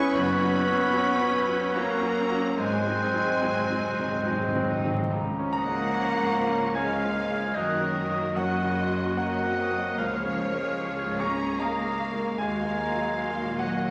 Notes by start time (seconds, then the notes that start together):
Already playing: B3 C#4 E4 G#4 B4 C#5 C#6
0.12 F#1 F#2 B3 C#4 F#4 B4 C#5 B5 F#6
0.35 C#4
0.40 F#3 C#4 F#4
0.54 F#4
0.66 F#3 C#4 F#4
0.75 C#4
0.92 F#3 B3 C#4 F#4
1.17 F#3 C#4 F#4
1.36 F#4
1.47 F#3 C#4 F#4
1.56 C#4
1.73 F#3 A#3 B3 C#4 F#4 A#4 A#5
1.96 C#4
2.03 F#3 C#4 F#4
2.18 F#4
2.29 F#3 C#4 F#4
2.39 C#4
2.57 G#1 G#2 G#3 C4 G#4 C5 G#5 F#6
2.65 G#2
2.79 G#2 C4
2.86 F#3 C4 D#4
3.00 D#4
3.06 G#2
3.14 G#2 F#3 C4 D#4
3.21 G#2 C4
3.28 G#2
3.37 G#2
3.42 G#2 F#3 G#3 C4 D#4
3.52 G#2
3.59 G#2 C4
3.68 G#2 F#3 C4 D#4
3.77 G#2
3.84 G#2 D#4
3.92 G#2
3.99 G#2 F#3 C4 D#4
4.05 G#2 C4
4.15 G#2
4.22 G#2 F#3
4.27 G#2 G#3 C4 D#4
4.40 G#2
4.47 G#2 C4
4.55 G#2 F#3 C4 D#4
4.63 G#2
4.69 G#2 D#4
4.78 G#2
4.83 G#2 F#3 C4 D#4
4.90 G#2 C4
5.03 G#2
5.10 C#2 F3 C#4 A#5
5.14 C#3
5.39 C#4
5.52 A#3 F#5 A#5 D#6
5.66 G#3
5.94 C#4 C#6
6.21 G#2
6.49 C#4
6.75 G#3 F5 G#5 F6
7.02 A#3
7.30 G#3
7.54 F#2 D#3 A#3 F#4 A#4 D#5 F#6
7.82 C#4
7.97 D#6
8.10 A#3
8.36 F#3 C#4 D#5 F#5 C#6
8.64 C#3
8.78 C6
8.91 C#4
9.17 F#3 A#3 D#5 F#5 A#5
9.44 C4
9.59 D#6
9.71 A#3
9.98 C#2 C#3 F3 G#4 C#5 F5 F6
10.25 C#4
10.52 G#3
10.79 C#4 C#6
11.06 G#2
11.19 C#4 A#5 C#6
11.33 C#4
11.59 G#3 A#3 F5 A#5 D#6
11.86 A#3
11.99 C#6
12.13 G#3
12.38 D#2 G#3 A#3 F#4 F5 G#5 C6
12.65 A#3
12.79 A#5
12.92 F#3
13.18 A#3 C6
13.45 A#2
13.59 F#3 D#5 F#5
13.73 A#3